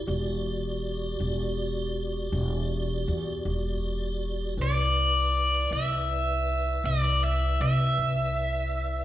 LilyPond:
<<
  \new Staff \with { instrumentName = "Overdriven electric guitar" } { \time 12/8 \key e \minor \tempo 4. = 53 r1. | d''4. e''4. d''8 e''8 e''2 | }
  \new Staff \with { instrumentName = "Tonewheel organ" } { \time 12/8 \key e \minor <fis' g' d''>1. | <e' b' d''>1. | }
  \new Staff \with { instrumentName = "Upright bass" } { \clef bass \time 12/8 \key e \minor e,,4. e,,4. e,,4 e,8 e,,4. | c,4. c,4. c,4 c8 c,4. | }
>>